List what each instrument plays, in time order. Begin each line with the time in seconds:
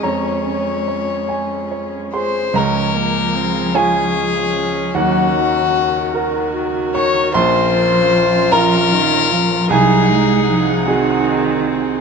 Already playing: string section C#4 G#4
0.03 grand piano F2 A#5, cello G#3, viola C#4, string section F4, violin C#5
0.45 grand piano C#4
0.88 grand piano C#5
1.29 grand piano G#5
1.71 grand piano C#5
2.13 grand piano G#4 C6, violin C5
2.54 grand piano C#2 A#5, string section C#3 F4 G#4, cello F3, viola C#4, violin A#4
2.95 viola A#3
3.35 viola C4
3.75 viola C#4, grand piano F4 C#5 G#5, violin G#4
4.93 grand piano D#2 F#5, cello F#3, string section F#4 A#4, violin F#4
5.35 cello D#3
5.75 cello D#3
6.13 viola F#4, grand piano F#4 A#4
6.95 violin C#5, grand piano C#6
7.34 grand piano A#1 C6, cello F3, string section C#4 F4, viola F4, violin C5
8.52 cello F3, grand piano F4 A#4 A#5, violin A#4
8.92 cello D#3
9.31 cello F3
9.69 grand piano C2 G#5, cello F#3, viola D#4, string section D#4 G#4 F#5, violin G#4
10.08 cello G#3
10.48 cello F3
10.87 cello D#3, viola C4, grand piano F#4 G#4